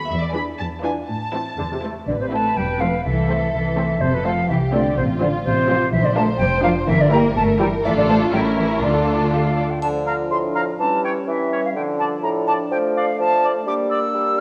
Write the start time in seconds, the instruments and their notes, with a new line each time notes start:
0.10 cello section E2, violin section E5
0.22 violin section D5
0.34 viola section E3 D4, violin section G#4 B4 B5
0.58 cello section E2, violin section A5
0.83 viola section E3 D4, violin section F4 B4 G#5
1.08 cello section A2, violin section A5
1.33 viola section E3 C4, violin section E4 C5
1.58 cello section E2, viola section D3
1.72 viola section C3
1.83 viola section A3, violin section E4 C5
2.07 double bass section A1, cello section D3, violin section B4, flute D5
2.20 cello section C3, flute C5
2.32 viola section A3 C4, cello section A3, violin section E4 C5, flute A5
2.56 double bass section E1, cello section G3, flute G5
2.80 cello section F3, viola section A3 C4, violin section E4 C5, flute F5
3.04 double bass section C2, cello section E3, violin section A4, flute E5
3.29 viola section A3 C4, violin section A4 C5
3.53 double bass section C2, cello section E3, flute E5
3.77 viola section A3 C4, violin section A4 C5
4.00 double bass section F1, cello section C3, violin section A4, flute C5
4.13 cello section B2, flute B4
4.24 cello section F3, viola section A3 C4, violin section F4 C5, flute F5
4.48 double bass section C2, cello section E3, violin section G4, flute E5
4.72 cello section D3, viola section A3 C4, violin section F4 C5, flute D5
4.97 double bass section A1, cello section C3, violin section F4, flute C5
5.20 cello section D3, viola section F3 C4, violin section F4 C5, flute D5
5.44 double bass section A1, cello section C3, flute C5
5.68 viola section F3 C4, violin section F4 C5
5.92 double bass section A#1, cello section E3, violin section C5, flute E5
6.04 cello section D3, flute D5
6.16 viola section F3 D4, cello section A3, violin section F4 A#4, flute A5
6.37 double bass section F1, cello section G3, flute G5
6.63 viola section F3 D4, cello section F3, violin section F4 A#4, flute F5
6.87 double bass section G1, cello section E3, violin section A#4, flute E5
7.00 cello section D3, flute D5
7.11 viola section E3 E4, cello section A#3, violin section G4 A#4, flute A#5
7.36 double bass section G1, cello section A3, flute A5
7.59 viola section E3 E4, cello section G3, violin section G4 A#4, flute G5
7.85 double bass section A1, cello section E3, viola section A3 D4, violin section F4 A4 D5, flute E5
7.97 cello section D3, flute D5
8.08 cello section A3, violin section C5, flute A5
8.32 double bass section A1, cello section G3, viola section A3 C#4, violin section E4 A#4, flute G5
8.57 cello section E3, flute E5
8.82 double bass section D2, cello section D3, viola section A3 D4, violin section F4 A4, flute D5
9.32 violin section G4, flute F5
9.46 violin section F4
9.57 violin section D5
9.70 flute G5
9.81 bassoon D3, french horn section F3 D4, flute A5, triangle
10.06 oboe F5, flute A#5
10.30 bassoon A2, flute C6
10.55 oboe F5, flute A#5
10.79 bassoon E3, french horn section G3 C#4, flute A5
11.03 oboe C#5, flute G5
11.27 bassoon E3, flute E5
11.53 oboe C#5
11.65 flute F5
11.75 bassoon D3, french horn section F3 D4, flute G5
11.99 oboe D5, flute A5
12.22 bassoon A2, flute A#5
12.46 oboe D5, flute A5
12.71 bassoon F3, french horn section A3, flute G5
12.95 oboe D5, flute F5
13.19 bassoon F3, flute A5
13.44 oboe D5
13.66 bassoon G3, french horn section A#3 D4, flute D6
13.90 oboe D5, flute E6
14.14 bassoon G3